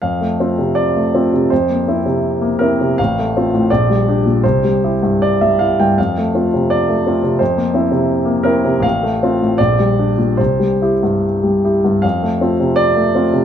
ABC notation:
X:1
M:2/4
L:1/16
Q:1/4=81
K:F
V:1 name="Grand piano"
f4 d4 | c6 B2 | f4 d4 | c4 d e f g |
f4 d4 | c6 B2 | f4 d4 | c4 z4 |
f4 d4 |]
V:2 name="Grand piano"
F,, A, [CF] C,2 A, [CF] C, | F,, B, [CE] C,2 B, [CE] C, | A,,, A, [CF] A,, B,,, G, [DG] B,, | C,, G, [EG] G,,2 G, [EG] G,, |
F,, A, [CF] C,2 A, [CF] C, | F,, B, [CE] C,2 B, [CE] C, | A,,, A, [CF] A,, B,,, G, [DG] B,, | C,, G, [EG] G,,2 G, [EG] G,, |
F,, A, [CF] C,2 A, [CF] C, |]